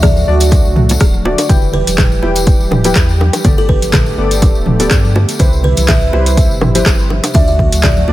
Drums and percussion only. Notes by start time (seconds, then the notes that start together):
0.03 kick, cross-stick, closed hi-hat, mid tom, tambourine, high conga, low conga
0.17 tambourine, high conga
0.40 closed hi-hat, tambourine
0.51 kick, closed hi-hat, tambourine, high bongo
0.65 tambourine
0.76 mid tom, high conga
0.89 closed hi-hat, tambourine, low bongo, high conga
1.00 kick, cross-stick, closed hi-hat, tambourine
1.14 tambourine, high conga
1.25 low bongo
1.38 closed hi-hat, tambourine, high bongo
1.49 kick, closed hi-hat, tambourine, low bongo, low conga
1.62 tambourine
1.73 low conga
1.87 closed hi-hat, tambourine, high conga
1.98 kick, cross-stick, clap, closed hi-hat, mid tom, tambourine, high conga, low conga
2.12 tambourine
2.23 low bongo
2.36 closed hi-hat, tambourine
2.47 kick, closed hi-hat, tambourine
2.60 tambourine
2.71 mid tom, high bongo, high conga
2.84 closed hi-hat, tambourine, low bongo, high conga
2.95 kick, cross-stick, clap, closed hi-hat, tambourine
3.09 tambourine
3.20 high bongo, high conga
3.33 closed hi-hat, tambourine, high bongo
3.44 kick, closed hi-hat, tambourine, low bongo, low conga
3.58 tambourine
3.69 kick, low conga
3.82 closed hi-hat, tambourine, high conga
3.92 kick, cross-stick, clap, closed hi-hat, mid tom, tambourine, high conga, low conga
4.06 tambourine, high conga
4.31 closed hi-hat, tambourine
4.42 kick, closed hi-hat, tambourine, high bongo
4.55 tambourine
4.66 mid tom, high conga
4.79 closed hi-hat, tambourine, low bongo, high conga
4.91 kick, cross-stick, clap, closed hi-hat, tambourine
5.04 tambourine, high conga
5.16 low bongo
5.28 closed hi-hat, tambourine
5.39 kick, closed hi-hat, tambourine, low bongo, low conga
5.53 tambourine
5.64 low conga
5.77 closed hi-hat, tambourine, high conga
5.88 kick, cross-stick, clap, closed hi-hat, mid tom, tambourine, high conga, low conga
6.01 tambourine
6.13 low bongo
6.26 closed hi-hat, tambourine
6.37 kick, closed hi-hat, tambourine
6.51 tambourine
6.61 mid tom, high bongo, high conga
6.75 closed hi-hat, tambourine, low bongo, high conga
6.86 kick, cross-stick, clap, closed hi-hat, tambourine
6.99 tambourine
7.10 high bongo, high conga
7.23 closed hi-hat, tambourine, high bongo
7.34 kick, closed hi-hat, tambourine, low bongo, low conga
7.48 tambourine
7.59 kick, low conga
7.72 closed hi-hat, tambourine, high conga
7.82 kick, cross-stick, clap, closed hi-hat, mid tom, tambourine, high conga, low conga
7.97 tambourine, high conga
8.08 low bongo